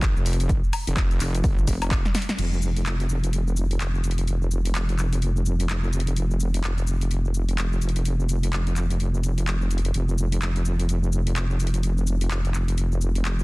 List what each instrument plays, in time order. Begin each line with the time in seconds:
Already playing: wobble bass G#1
0.02 kick, clap, closed hi-hat, shaker
0.16 wobble bass F1, shaker
0.26 open hi-hat, shaker
0.33 closed hi-hat
0.40 closed hi-hat, shaker
0.49 kick, closed hi-hat, shaker
0.64 shaker
0.73 open hi-hat, high woodblock, shaker
0.87 wobble bass F1, closed hi-hat, shaker
0.97 kick, clap, closed hi-hat, shaker
1.11 closed hi-hat, shaker
1.20 wobble bass F1, clap, open hi-hat, shaker
1.35 closed hi-hat, shaker
1.44 wobble bass G1, kick, open hi-hat, shaker
1.58 shaker
1.67 wobble bass F1, kick, open hi-hat, shaker
1.82 closed hi-hat, high woodblock, shaker
1.91 kick, clap, closed hi-hat, shaker
2.05 snare, shaker
2.15 snare, open hi-hat, shaker
2.22 closed hi-hat
2.29 snare, closed hi-hat, shaker
2.38 wobble bass F1, closed hi-hat, crash, shaker
2.53 shaker
2.62 shaker
2.76 closed hi-hat, shaker
2.86 clap, closed hi-hat, shaker
3.00 closed hi-hat, shaker
3.09 shaker
3.24 closed hi-hat, shaker
3.33 closed hi-hat, shaker
3.47 shaker
3.57 shaker
3.71 closed hi-hat, shaker
3.80 clap, closed hi-hat, shaker
3.95 shaker
4.04 closed hi-hat, shaker
4.11 closed hi-hat
4.18 closed hi-hat, shaker
4.28 closed hi-hat, shaker
4.42 shaker
4.51 shaker
4.65 closed hi-hat, shaker
4.75 clap, closed hi-hat, shaker
4.89 closed hi-hat, shaker
4.99 clap, shaker
5.13 closed hi-hat, shaker
5.22 closed hi-hat, shaker
5.36 shaker
5.46 shaker
5.60 closed hi-hat, shaker
5.69 clap, closed hi-hat, shaker
5.84 shaker
5.93 closed hi-hat, shaker
6.00 closed hi-hat
6.07 closed hi-hat, shaker
6.17 closed hi-hat, shaker
6.31 shaker
6.40 shaker
6.54 closed hi-hat, shaker
6.64 clap, closed hi-hat, shaker
6.78 closed hi-hat, shaker
6.87 shaker
7.01 closed hi-hat, shaker
7.11 closed hi-hat, shaker
7.25 shaker
7.34 shaker
7.49 closed hi-hat, shaker
7.58 clap, closed hi-hat, shaker
7.72 shaker
7.82 closed hi-hat, shaker
7.89 closed hi-hat
7.96 closed hi-hat, shaker
8.05 closed hi-hat, shaker
8.20 shaker
8.29 closed hi-hat, shaker
8.43 closed hi-hat, shaker
8.53 clap, closed hi-hat, shaker
8.67 closed hi-hat, shaker
8.76 clap, shaker
8.90 closed hi-hat, shaker
9.00 closed hi-hat, shaker
9.14 shaker
9.24 closed hi-hat, shaker
9.38 closed hi-hat, shaker
9.47 clap, closed hi-hat, shaker
9.61 shaker
9.71 closed hi-hat, shaker
9.78 closed hi-hat
9.85 closed hi-hat, shaker
9.94 wobble bass F1, closed hi-hat, shaker
10.09 shaker
10.18 shaker
10.32 closed hi-hat, shaker
10.42 clap, closed hi-hat, shaker
10.56 closed hi-hat, shaker
10.65 shaker
10.80 closed hi-hat, shaker
10.89 closed hi-hat, shaker
11.03 shaker
11.12 shaker
11.27 closed hi-hat, shaker
11.36 clap, closed hi-hat, shaker
11.50 shaker
11.60 closed hi-hat, shaker
11.67 closed hi-hat
11.74 closed hi-hat, shaker
11.83 closed hi-hat, shaker
11.98 shaker
12.07 shaker
12.21 closed hi-hat, shaker
12.30 clap, closed hi-hat, shaker
12.45 closed hi-hat, shaker
12.54 clap, shaker
12.68 closed hi-hat, shaker
12.78 closed hi-hat, shaker
12.92 shaker
13.01 shaker
13.15 closed hi-hat, shaker
13.25 clap, closed hi-hat, shaker
13.39 shaker